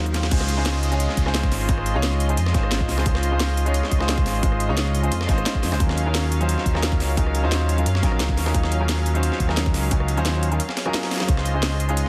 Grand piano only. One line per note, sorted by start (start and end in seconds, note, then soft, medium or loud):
0.00 0.29 F#3 medium
0.00 0.29 C#4 medium
0.00 0.30 D#4 medium
0.00 0.30 F4 medium
0.00 0.31 A#4 medium
0.31 0.55 G#3 medium
0.31 0.55 C#4 medium
0.31 0.56 D#4 medium
0.31 0.56 F4 medium
0.31 0.56 C5 medium
0.57 0.90 G#3 medium
0.57 0.90 C#4 medium
0.57 0.90 D#4 medium
0.57 0.90 F4 medium
0.57 0.90 C5 medium
0.91 1.23 G#3 medium
0.91 1.24 C#4 medium
0.91 1.24 D#4 medium
0.91 1.24 F4 medium
0.91 1.25 C#5 medium
1.25 1.66 G#3 medium
1.25 1.66 C#4 medium
1.25 1.67 D#4 medium
1.25 1.67 F4 medium
1.25 1.68 C5 loud
1.68 1.92 G#3 medium
1.68 1.93 C#4 medium
1.68 1.93 D#4 medium
1.68 1.93 F4 medium
1.68 1.93 C5 medium
1.94 2.26 G#3 loud
1.94 2.27 C#4 medium
1.94 2.27 D#4 medium
1.94 2.27 F4 medium
1.94 2.28 C#5 loud
2.28 2.36 G#3 medium
2.28 2.36 C#4 medium
2.28 2.36 D#4 medium
2.28 2.36 F4 medium
2.28 2.37 C5 medium
2.53 2.95 G#3 medium
2.53 2.95 C#4 medium
2.53 2.96 D#4 medium
2.53 2.96 F4 medium
2.53 2.97 C5 loud
2.97 3.03 G#3 medium
2.97 3.04 C#4 medium
2.97 3.04 D#4 medium
2.97 3.04 F4 medium
2.97 3.04 C5 loud
3.05 3.29 G#3 medium
3.05 3.30 C#4 medium
3.05 3.30 D#4 medium
3.05 3.30 F4 medium
3.31 3.64 G#3 medium
3.31 3.64 C#4 medium
3.31 3.64 D#4 medium
3.31 3.64 F4 medium
3.31 3.65 C5 medium
3.65 3.97 G#3 medium
3.65 3.98 C#4 medium
3.65 3.99 D#4 medium
3.65 3.99 F4 medium
3.65 3.99 C#5 loud
3.99 4.40 G#3 loud
3.99 4.41 C#4 medium
3.99 4.41 D#4 medium
3.99 4.42 F4 medium
3.99 4.42 C5 loud
4.42 4.67 G#3 medium
4.42 4.67 C#4 medium
4.42 4.67 D#4 medium
4.42 4.67 F4 medium
4.42 4.68 C5 medium
4.68 5.01 G#3 loud
4.68 5.01 C#4 medium
4.68 5.01 D#4 medium
4.68 5.02 F4 medium
4.68 5.02 C#5 loud
5.02 5.10 G#3 medium
5.02 5.10 C#4 medium
5.02 5.10 D#4 medium
5.02 5.11 F4 medium
5.02 5.11 C5 medium
5.27 5.69 G#3 medium
5.27 5.69 C#4 medium
5.27 5.70 D#4 medium
5.27 5.70 F4 medium
5.27 5.71 C5 loud
5.71 5.78 G#3 medium
5.71 5.78 C#4 medium
5.71 5.78 D#4 medium
5.71 5.78 F4 medium
5.71 5.79 C5 loud
5.79 6.04 F#3 medium
5.79 6.04 C#4 medium
5.79 6.04 D#4 medium
5.79 6.04 F4 medium
5.79 6.05 A#4 medium
6.06 6.38 F#3 medium
6.06 6.38 C#4 medium
6.06 6.39 D#4 medium
6.06 6.39 F4 medium
6.06 6.39 A#4 medium
6.40 6.72 F#3 medium
6.40 6.73 C#4 medium
6.40 6.73 D#4 medium
6.40 6.73 F4 medium
6.40 6.73 C5 loud
6.73 7.15 F#3 loud
6.73 7.15 C#4 medium
6.73 7.15 D#4 medium
6.73 7.16 F4 medium
6.73 7.16 A#4 loud
7.17 7.41 F#3 medium
7.17 7.41 C#4 medium
7.17 7.41 D#4 medium
7.17 7.42 F4 medium
7.17 7.42 A#4 medium
7.43 7.75 F#3 medium
7.43 7.75 C#4 medium
7.43 7.76 D#4 medium
7.43 7.76 F4 medium
7.43 7.76 C5 loud
7.77 7.84 F#3 medium
7.77 7.85 C#4 medium
7.77 7.85 D#4 medium
7.77 7.85 F4 medium
7.77 7.85 A#4 medium
8.01 8.43 F#3 loud
8.01 8.44 C#4 medium
8.01 8.44 D#4 medium
8.01 8.45 F4 medium
8.01 8.45 A#4 loud
8.45 8.52 F#3 medium
8.45 8.52 C#4 medium
8.45 8.52 D#4 medium
8.45 8.53 F4 medium
8.45 8.53 A#4 medium
8.54 8.78 F#3 medium
8.54 8.78 C#4 medium
8.54 8.79 D#4 medium
8.54 8.79 F4 medium
8.54 8.79 A#4 medium
8.80 9.12 F#3 medium
8.80 9.13 C#4 medium
8.80 9.13 D#4 medium
8.80 9.13 F4 medium
8.80 9.13 A#4 medium
9.14 9.46 F#3 medium
9.14 9.47 C#4 medium
9.14 9.47 D#4 medium
9.14 9.47 F4 medium
9.14 9.47 C5 medium
9.47 9.89 F#3 loud
9.47 9.89 C#4 medium
9.47 9.90 D#4 medium
9.47 9.90 F4 medium
9.47 9.91 A#4 loud
9.90 10.15 F#3 medium
9.90 10.15 C#4 medium
9.90 10.16 D#4 medium
9.90 10.16 F4 medium
9.90 10.16 A#4 medium
10.17 10.49 F#3 loud
10.17 10.50 C#4 medium
10.17 10.50 D#4 medium
10.17 10.50 F4 medium
10.17 10.50 C5 loud
10.51 10.59 F#3 medium
10.51 10.59 C#4 medium
10.51 10.59 D#4 medium
10.51 10.59 F4 medium
10.51 10.59 A#4 medium
10.85 11.18 F#3 loud
10.85 11.18 C#4 medium
10.85 11.18 D#4 medium
10.85 11.19 F4 medium
10.85 11.19 A#4 loud
11.20 11.26 F#3 medium
11.20 11.27 C#4 medium
11.20 11.27 D#4 medium
11.20 11.27 F4 medium
11.20 11.27 A#4 medium
11.28 11.52 G#3 medium
11.28 11.52 C#4 medium
11.28 11.53 D#4 medium
11.28 11.53 F4 medium
11.28 11.53 C5 medium
11.54 11.86 G#3 medium
11.54 11.87 C#4 medium
11.54 11.87 D#4 medium
11.54 11.87 F4 medium
11.54 11.87 C5 medium
11.88 12.09 G#3 medium
11.88 12.09 C#4 medium
11.88 12.09 D#4 medium
11.88 12.09 F4 medium
11.88 12.09 C#5 medium